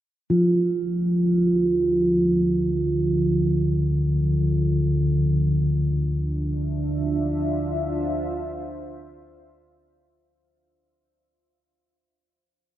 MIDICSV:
0, 0, Header, 1, 4, 480
1, 0, Start_track
1, 0, Tempo, 500000
1, 12260, End_track
2, 0, Start_track
2, 0, Title_t, "Ambient pad"
2, 0, Program_c, 0, 92
2, 5073, Note_on_c, 0, 62, 77
2, 5842, Note_on_c, 0, 76, 80
2, 5941, Note_on_c, 0, 65, 67
2, 7212, Note_on_c, 0, 72, 75
2, 9833, Note_off_c, 0, 62, 0
2, 9833, Note_off_c, 0, 65, 0
2, 9840, Note_off_c, 0, 72, 0
2, 9840, Note_off_c, 0, 76, 0
2, 12260, End_track
3, 0, Start_track
3, 0, Title_t, "Singing bowl"
3, 0, Program_c, 1, 14
3, 289, Note_on_c, 1, 53, 50
3, 289, Note_on_c, 1, 65, 49
3, 9854, Note_off_c, 1, 53, 0
3, 9854, Note_off_c, 1, 65, 0
3, 12260, End_track
4, 0, Start_track
4, 0, Title_t, "Synth drone"
4, 0, Program_c, 2, 95
4, 294, Note_on_c, 2, 38, 69
4, 296, Note_on_c, 2, 50, 62
4, 9952, Note_off_c, 2, 38, 0
4, 9953, Note_off_c, 2, 50, 0
4, 12260, End_track
0, 0, End_of_file